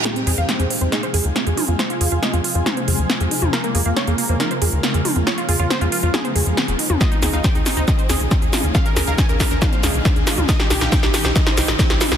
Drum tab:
HH |xxoxxxoxxxoxxxox|xxoxxxoxxxoxxxox|xxo-xxoxxxoxxxox|xxoxxxoxxxoxxxo-|
SH |----------------|----------------|----------------|----------------|
SD |o---o---o---o---|o---o---o---o---|o---o---o---o---|o---o---o---o---|
T2 |--------------o-|--------o------o|--------------o-|--------o------o|
BD |----------------|----------------|----------------|----------------|

HH |xxoxxxoxxxoxxxox|xxoxxxoxxxoxxxox|xxoxxxoxxxo-xxox|
SH |xxxxxxxxxxxxxxxx|xxxxxxxxxxxxxxxx|xxxxxxxxxxxxxxxx|
SD |o-o-o-o-o-o-o-o-|o-o-o-o-o-o-o-o-|oooooooooooooooo|
T2 |--------------o-|--------o------o|--------------o-|
BD |o---o---o---o---|o---o-o-o---o---|o---o---o---o---|